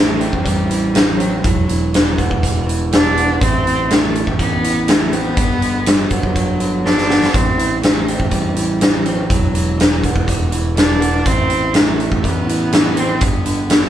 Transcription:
Already playing: A1 A2 E3 G3 A3
0.20 C4, closed hi-hat
0.33 A1, kick
0.41 G3
0.46 A1, kick, closed hi-hat
0.70 E3, closed hi-hat
0.94 G3, snare, closed hi-hat
1.14 F#3
1.19 C4, closed hi-hat
1.42 E1 E3 F#3, kick, closed hi-hat
1.68 E3, closed hi-hat
1.93 G3, snare, closed hi-hat
2.18 E1 B3, kick, closed hi-hat
2.31 E1, kick
2.42 E1 G3, kick, closed hi-hat
2.66 E3, closed hi-hat
2.92 G3 D4, snare, closed hi-hat
3.16 B3, closed hi-hat
3.40 A1 A2 C4, kick, closed hi-hat
3.64 E3, closed hi-hat
3.89 G3 A3, snare, closed hi-hat
4.15 closed hi-hat
4.27 A1, kick
4.39 A1 G3 B3, kick, closed hi-hat
4.63 E3, closed hi-hat
4.88 G3 A3, snare, closed hi-hat
5.12 B3 C4, closed hi-hat
5.37 G1 G2, kick, closed hi-hat
5.62 D3, closed hi-hat
5.86 F#3 G3, snare, closed hi-hat
6.10 G1 F#3 B3, kick, closed hi-hat
6.23 G1, kick
6.35 G1 F#3, kick, closed hi-hat
6.60 D3, closed hi-hat
6.84 F#3 D4, snare
6.98 snare
7.08 B3, snare
7.23 snare
7.34 A1 A2 C4, kick, closed hi-hat
7.57 E3, closed hi-hat
7.82 G3 A3, snare, closed hi-hat
8.07 C4, closed hi-hat
8.20 A1, kick
8.30 A1 G3, kick, closed hi-hat
8.56 E3, closed hi-hat
8.81 G3, snare, closed hi-hat
9.05 F#3 C4, closed hi-hat
9.30 E1 E3 F#3, kick, closed hi-hat
9.55 E3, closed hi-hat
9.78 G3, snare, closed hi-hat
10.03 E1 B3, kick, closed hi-hat
10.16 E1, kick
10.27 E1 G3, kick, closed hi-hat
10.52 E3, closed hi-hat
10.76 G3 D4, snare, closed hi-hat
10.99 B3, closed hi-hat
11.25 A1 A2 C4, kick, closed hi-hat
11.48 E3, closed hi-hat
11.73 G3, snare, closed hi-hat
11.79 A3
12.00 closed hi-hat
12.12 A1, kick
12.23 A1 G3 B3, kick, closed hi-hat
12.47 E3, closed hi-hat
12.72 G3, snare, closed hi-hat
12.97 C4, closed hi-hat
13.20 G1 G2 B3, kick, closed hi-hat
13.46 D3, closed hi-hat
13.70 F#3, snare, closed hi-hat

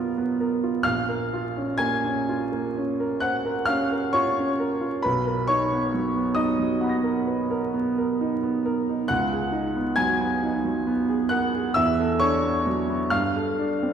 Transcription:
Already playing: B1 F#3 B3 F4 A#4 B4 D#5 F#5 B5 D#6 F6 A#6
0.18 B3
0.41 A#4
0.64 F4
0.83 A#1 F5 F6
1.09 A#4
1.34 F4
1.56 C#4
1.78 A#3 G#5 G#6
2.04 C#4
2.29 F4
2.52 A#3
2.76 C#4
3.00 A#4
3.20 C5 F#5 F#6
3.46 A#4
3.66 C#4 F5 F6
3.92 A#4
4.13 F4 C#5 C#6
4.37 C#4
4.59 A#4
4.81 F4
5.02 B1 B4 B5
5.27 A#4
5.47 D#4 C#5 C#6
5.72 B3
5.94 F#3
6.16 B3
6.35 D#4 D#5 D#6
6.59 F#3
6.81 B3 F#5 B5
6.87 D#6 A#6
7.04 A#4
7.27 B4
7.50 A#4
7.74 B3
7.98 A#4
8.21 D#4
8.43 B3
8.65 A#4
8.89 D#4
9.08 C#2 F#5 F#6
9.31 G#4
9.52 D#4
9.76 B3
9.96 F#3 G#5 G#6
10.20 B3
10.43 D#4
10.65 F#3
10.87 B3
11.08 G#4
11.29 A#4 F#5 F#6
11.54 G#4
11.74 E2 E5 E6
11.99 A4
12.20 D4 C#5 C#6
12.43 B3
12.67 F#3
12.89 B3
13.10 G2 F5 F6
13.36 A4
13.59 D4
13.83 C4

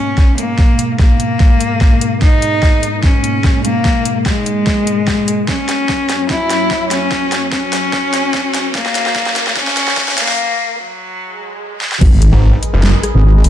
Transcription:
Already playing: G#2 B2 G#3 A#3 C#4 D#4
0.18 kick, snare
0.38 A#3, closed hi-hat
0.58 kick, snare
0.79 closed hi-hat
0.99 A#3, kick, snare
1.20 closed hi-hat
1.40 kick, snare
1.61 closed hi-hat
1.81 kick, snare
2.01 closed hi-hat
2.22 D#4, kick, snare
2.42 closed hi-hat
2.63 kick, snare
2.83 closed hi-hat
3.03 C#4, kick, snare
3.24 closed hi-hat
3.44 kick, snare
3.65 A#3, closed hi-hat
3.85 kick, snare
4.05 closed hi-hat
4.26 G#3, kick, snare
4.46 closed hi-hat
4.67 kick, snare
4.87 closed hi-hat
5.07 kick, snare
5.28 closed hi-hat
5.48 F#2 F#3 C#4 C#5, kick, snare, riser
5.69 snare, closed hi-hat
5.89 kick, snare
6.09 snare, open hi-hat
6.30 E4, kick, snare
6.50 snare, closed hi-hat
6.71 kick, snare
6.91 C#4, snare, closed hi-hat
7.12 kick, snare
7.32 snare, closed hi-hat
7.52 C#4, kick, snare
7.73 snare, open hi-hat
7.93 kick, snare
8.14 snare, closed hi-hat
8.34 kick, snare
8.54 snare, closed hi-hat
8.75 A#3, kick, snare
8.86 snare
8.95 snare, closed hi-hat
9.06 snare
9.16 kick, snare
9.26 snare
9.36 snare, open hi-hat
9.47 snare
9.56 C#4, kick, snare
9.67 snare
9.77 snare, closed hi-hat
9.88 snare
9.97 kick, snare
10.08 snare
10.18 A#3, snare, closed hi-hat
10.28 snare
10.79 F#3
11.20 swell
11.81 snare
11.92 snare
12.01 G#1 G#3 G#4 A#4 B4 D#5, kick, crash, impact
12.22 closed hi-hat
12.33 G#1
12.63 closed hi-hat
12.73 F#1
12.83 snare
13.03 cross-stick, closed hi-hat
13.14 G#1
13.44 G#1, open hi-hat

